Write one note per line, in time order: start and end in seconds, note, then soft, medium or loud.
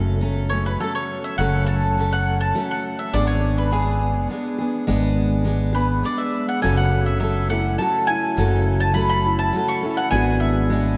0.00 0.76 F#1 medium
0.00 0.22 F#2 medium
0.00 0.22 C#3 medium
0.00 0.20 F#3 medium
0.00 0.21 A3 medium
0.00 0.22 C#4 medium
0.00 0.23 A4 medium
0.21 0.51 F#3 medium
0.21 0.51 A3 medium
0.21 0.50 C#4 medium
0.21 0.49 A4 medium
0.49 0.79 F#3 soft
0.49 0.80 A3 soft
0.49 0.80 C#4 soft
0.49 0.80 A4 soft
0.49 0.65 C#5 medium
0.66 0.80 B4 medium
0.80 1.39 F#3 medium
0.80 1.38 A3 medium
0.80 1.39 C#4 medium
0.80 0.94 A4 medium
0.80 1.39 A4 medium
0.95 1.22 C#5 medium
1.24 1.37 E5 medium
1.38 2.52 F#1 loud
1.38 1.97 F#2 medium
1.38 1.97 C#3 medium
1.38 1.96 F#3 medium
1.38 1.98 A3 medium
1.38 1.98 C#4 medium
1.38 1.98 A4 medium
1.38 1.66 F#5 loud
1.67 2.08 A5 medium
1.97 2.54 F#3 medium
1.97 2.54 A3 medium
1.97 2.56 C#4 medium
1.97 2.57 A4 medium
2.13 2.40 F#5 medium
2.41 2.68 A5 medium
2.55 3.13 F#3 medium
2.55 3.14 A3 medium
2.55 3.14 C#4 medium
2.55 3.15 A4 medium
2.71 2.99 F#5 medium
2.99 3.14 E5 medium
3.13 4.27 G#1 loud
3.13 3.70 G#3 medium
3.13 3.71 B3 medium
3.13 3.72 D4 medium
3.13 3.73 G#4 medium
3.13 3.26 D5 loud
3.27 3.58 C#5 medium
3.58 3.73 B4 medium
3.71 4.28 G#3 medium
3.71 4.30 B3 medium
3.71 4.30 D4 medium
3.71 4.27 G#4 medium
3.71 4.31 G#4 medium
4.29 4.59 G#3 medium
4.29 4.60 B3 medium
4.29 4.59 D4 medium
4.29 4.57 G#4 medium
4.58 4.87 B3 soft
4.58 4.87 D4 soft
4.58 4.88 G#4 medium
4.87 6.02 G#1 medium
4.87 5.43 G#3 medium
4.87 5.44 B3 medium
4.87 5.45 D4 medium
4.87 5.46 G#4 medium
5.44 5.75 G#3 medium
5.44 5.75 B3 medium
5.44 5.73 D4 medium
5.44 5.71 G#4 medium
5.73 6.03 B3 soft
5.73 6.05 D4 soft
5.73 6.04 G#4 soft
5.73 6.05 B4 medium
6.03 6.63 G#3 medium
6.03 6.63 B3 medium
6.03 6.63 D4 medium
6.03 6.63 G#4 medium
6.03 6.20 D5 medium
6.18 6.48 E5 medium
6.49 6.62 F#5 medium
6.62 7.77 F#1 medium
6.62 7.21 F#2 medium
6.62 7.21 C#3 medium
6.62 7.18 F#3 medium
6.62 7.20 A3 medium
6.62 7.21 C#4 medium
6.62 7.21 F#4 medium
6.62 7.22 A4 medium
6.62 6.77 G#5 medium
6.77 7.05 F#5 medium
7.06 7.19 E5 medium
7.20 7.50 F#3 medium
7.20 7.50 A3 medium
7.20 7.49 C#4 medium
7.20 7.48 A4 medium
7.20 7.49 E5 medium
7.49 7.77 F#3 soft
7.49 7.78 A3 soft
7.49 7.79 C#4 soft
7.49 7.80 E4 medium
7.49 7.79 A4 medium
7.49 7.78 F#5 medium
7.78 8.37 F#3 medium
7.78 8.37 A3 medium
7.78 8.38 C#4 medium
7.78 8.09 F#4 medium
7.78 8.38 A4 medium
7.78 8.07 A5 medium
8.07 8.38 E4 medium
8.07 8.77 G#5 loud
8.37 9.51 F#1 loud
8.37 8.96 F#2 medium
8.37 8.96 C#3 medium
8.37 8.93 F#3 medium
8.37 8.94 A3 medium
8.37 8.95 C#4 medium
8.37 8.96 F#4 medium
8.37 8.96 A4 medium
8.80 8.94 A5 loud
8.94 9.52 F#3 medium
8.94 9.53 A3 medium
8.94 9.54 C#4 medium
8.94 9.55 A4 medium
8.94 9.08 B5 medium
9.10 9.38 B5 loud
9.26 9.55 E4 medium
9.39 9.67 A5 medium
9.53 9.83 F#3 medium
9.53 9.83 A3 medium
9.53 9.82 C#4 medium
9.53 9.84 F#4 medium
9.53 9.80 A4 medium
9.68 9.96 C#6 medium
9.82 10.10 F#3 soft
9.82 10.11 A3 soft
9.82 10.12 C#4 soft
9.82 10.13 E4 medium
9.82 10.12 A4 soft
9.97 10.10 F#5 medium
10.11 10.97 G#1 loud
10.11 10.69 G#3 medium
10.11 10.71 B3 medium
10.11 10.71 D4 medium
10.11 10.71 F#4 medium
10.11 10.72 G#4 medium
10.11 10.39 G#5 loud
10.40 10.97 E5 medium
10.70 10.97 G#3 medium
10.70 10.97 B3 medium
10.70 10.97 D4 medium
10.70 10.97 G#4 medium